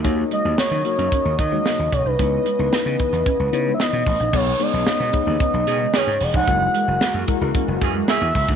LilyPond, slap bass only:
\new Staff \with { instrumentName = "Slap bass" } { \clef bass \time 4/4 \key b \major \tempo 4 = 112 dis,8 r16 dis,16 r16 dis16 r16 fis,16 r16 dis,16 dis8 r16 dis,16 b,,16 c,16 | cis,8 r16 cis,16 r16 cis16 r16 e,16 r16 cis,16 cis8 r16 b,16 a,,16 ais,,16 | b,,8 r16 b,,16 r16 b,16 r16 dis,16 r16 b,,16 b,8 r16 gis,16 e,,16 eis,,16 | fis,,8 r16 fis,,16 r16 fis,16 r16 cis,16 r16 fis,,16 fis,8 r16 e,16 cis,16 d,16 | }